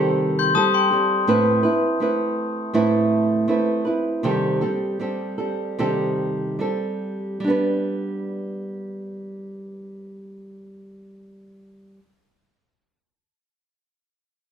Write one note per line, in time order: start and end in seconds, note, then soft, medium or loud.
0.00 0.55 C3 medium
0.00 0.56 D#3 medium
0.00 0.54 G3 medium
0.00 0.55 C4 medium
0.00 0.56 G4 medium
0.00 0.57 A4 medium
0.39 0.54 C6 medium
0.39 0.54 G6 medium
0.55 0.91 G3 medium
0.55 0.91 C4 medium
0.55 0.90 G4 medium
0.55 0.89 A4 medium
0.55 0.74 A5 medium
0.55 0.74 D#6 medium
0.74 1.25 G5 soft
0.74 1.24 C6 medium
0.91 1.27 G3 soft
0.91 1.27 C4 soft
0.91 1.28 G4 soft
0.91 1.27 A4 medium
1.27 1.64 A2 medium
1.27 1.64 A3 medium
1.27 1.64 C4 medium
1.27 1.63 E4 medium
1.27 1.62 B4 medium
1.63 2.00 C4 soft
1.63 2.00 E4 soft
1.63 2.00 B4 medium
2.00 2.73 A3 medium
2.00 2.74 C4 soft
2.00 2.73 E4 medium
2.00 2.74 B4 medium
2.74 3.48 A2 medium
2.74 3.47 A3 medium
2.74 3.48 C4 medium
2.74 3.48 E4 medium
2.74 3.48 B4 medium
3.48 3.85 A3 medium
3.48 3.85 C4 medium
3.48 3.85 E4 medium
3.48 3.84 B4 medium
3.85 4.23 C4 soft
3.85 4.24 E4 soft
3.85 4.23 B4 soft
4.23 4.61 C3 medium
4.23 4.62 D#3 medium
4.23 4.62 G3 medium
4.23 4.61 C4 medium
4.23 4.61 G4 medium
4.23 4.60 A4 medium
4.61 4.98 G3 soft
4.61 4.99 C4 soft
4.61 5.00 G4 medium
4.61 5.00 A4 soft
4.99 5.39 G3 medium
4.99 5.38 C4 medium
4.99 5.38 G4 medium
4.99 5.37 A4 medium
5.38 5.78 G3 soft
5.38 5.78 C4 soft
5.38 5.79 G4 soft
5.38 5.78 A4 soft
5.79 6.60 C3 medium
5.79 6.60 D#3 medium
5.79 6.58 G3 medium
5.79 6.58 C4 medium
5.79 6.60 G4 medium
5.79 6.60 A4 medium
6.59 7.40 G3 medium
6.59 7.44 C4 soft
6.59 7.47 G4 medium
6.59 7.44 A4 medium
7.40 11.99 G3 medium
7.44 12.06 B3 medium
7.44 12.03 D4 medium
7.50 12.09 B4 medium